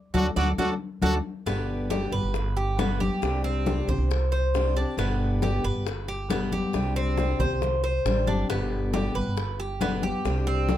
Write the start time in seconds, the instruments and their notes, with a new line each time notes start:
0.14 upright bass D2, steel-string acoustic guitar F#3 A3 D4, cuban tres F#4 A4 D5, trumpet F#4, low bongo, high conga
0.36 upright bass D2, steel-string acoustic guitar F#3 A3 D4, cuban tres F#4 A4 D5, trumpet F#4, low bongo, high conga
0.58 steel-string acoustic guitar F#3 A3 D4, cuban tres F#4 A4 D5, trumpet F#4, low bongo, high conga
1.02 upright bass D2, steel-string acoustic guitar F#3 A3 D4, cuban tres F#4 A4 D5, trumpet F#4, low bongo, high conga
1.46 upright bass G1, steel-string acoustic guitar B2 D3 G3 B3 G4, cuban tres B3, high bongo
1.69 high conga
1.90 steel-string acoustic guitar B2 D3 G3 B3 G4, cuban tres G4, high bongo, high conga
2.12 upright bass G1, steel-string acoustic guitar G3 B3 G4, cuban tres B4
2.23 upright bass G1
2.34 muted steel-string acoustic guitar stroke, high bongo, high conga
2.57 cuban tres G4, high conga
2.79 steel-string acoustic guitar B2 D3 G3 B3 G4, cuban tres B3, high bongo, low bongo, high conga
3.00 steel-string acoustic guitar G3 B3 G4, cuban tres G4, high conga
3.22 upright bass C2, steel-string acoustic guitar C3 G3 C4 D4 G4, high bongo
3.44 cuban tres C4, high bongo, high conga
3.66 steel-string acoustic guitar C3 G3 C4 D4 G4, high bongo, high conga
3.88 upright bass C2, steel-string acoustic guitar C4 D4 G4, cuban tres C5, high bongo, high conga, low conga
3.98 upright bass C2
4.10 muted steel-string acoustic guitar stroke, high bongo, high conga
4.32 cuban tres C5, high conga
4.54 steel-string acoustic guitar C3 G3 C4 D4 G4, high bongo, low bongo, high conga
4.76 steel-string acoustic guitar C4 D4 G4, cuban tres D4, high bongo
4.97 upright bass G1, steel-string acoustic guitar B2 D3 G3 B3 G4, cuban tres B3, high bongo, high conga
5.21 high conga
5.42 steel-string acoustic guitar B2 D3 G3 B3 G4, cuban tres G4, high bongo, high conga
5.64 upright bass G1, steel-string acoustic guitar G3 B3 G4, cuban tres B4
5.75 upright bass G1
5.86 muted steel-string acoustic guitar stroke, high bongo, high conga
6.08 cuban tres G4, high conga
6.30 steel-string acoustic guitar B2 D3 G3 B3 G4, cuban tres B3, high bongo, low bongo, high conga
6.52 steel-string acoustic guitar G3 B3 G4, cuban tres G4, high conga
6.73 upright bass C2, steel-string acoustic guitar C3 G3 C4 D4 G4, high bongo
6.96 cuban tres C4, high bongo, high conga
7.17 steel-string acoustic guitar C3 G3 C4 D4 G4, high bongo, high conga
7.39 upright bass C2, steel-string acoustic guitar C4 D4 G4, cuban tres C5, high bongo, high conga, low conga
7.50 upright bass C2
7.61 muted steel-string acoustic guitar stroke, high bongo, high conga, low conga
7.84 cuban tres C5, high conga
8.05 upright bass A1, steel-string acoustic guitar C3 G3 C4 D4 G4, high bongo, low bongo, high conga
8.27 upright bass G1, steel-string acoustic guitar C4 D4 G4, cuban tres D4, high bongo, high conga
8.49 upright bass G1, steel-string acoustic guitar B2 D3 G3 B3 G4, cuban tres B3, high bongo
8.72 high conga
8.93 steel-string acoustic guitar B2 D3 G3 B3 G4, cuban tres G4, high bongo, high conga
9.14 upright bass G1, steel-string acoustic guitar G3 B3 G4, cuban tres B4
9.26 upright bass G1
9.37 muted steel-string acoustic guitar stroke, high bongo, high conga
9.60 cuban tres G4, high conga
9.81 steel-string acoustic guitar B2 D3 G3 B3 G4, cuban tres B3, high bongo, low bongo, high conga
10.02 steel-string acoustic guitar G3 B3 G4, cuban tres G4, high conga
10.25 upright bass C2, steel-string acoustic guitar C3 G3 C4 D4 G4, high bongo
10.47 cuban tres C4, high bongo, high conga
10.69 steel-string acoustic guitar C3 G3 C4 D4 G4, high bongo, high conga